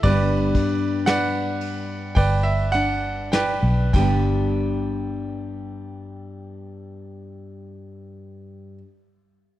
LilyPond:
<<
  \new Staff \with { instrumentName = "Grand piano" } { \time 4/4 \key g \major \tempo 4 = 47 << { d''4 fis''4 g''16 e''16 fis''8 g''8 g''8~ | g''1 | } \\ { <g' b'>4 <b' d''>4 <b' d''>4 <b' d''>8 r8 | r1 | } >> }
  \new Staff \with { instrumentName = "Nylon-string guitar" } { \time 4/4 \key g \major << { <g b d' b'>2~ <g b d' b'>8 d'8 b'8 <g b d' b'>8~ | <g b d' b'>1 | } \\ { g,2.~ g,8 g,8~ | g,1 | } >> }
  \new Staff \with { instrumentName = "Fingered electric bass" } { \clef bass \time 4/4 \key g \major g,,8 r4. g,,4~ g,,16 b,,16 g,,8~ | g,,1 | }
  \new DrumStaff \with { instrumentName = "Drums" } \drummode { \time 4/4 <bd cymr>8 <bd cymr>8 <cymr sn>8 cymr8 <bd cymr>8 cymr8 <cymr sn>8 <cymc bd>8 | r4 r4 r4 r4 | }
>>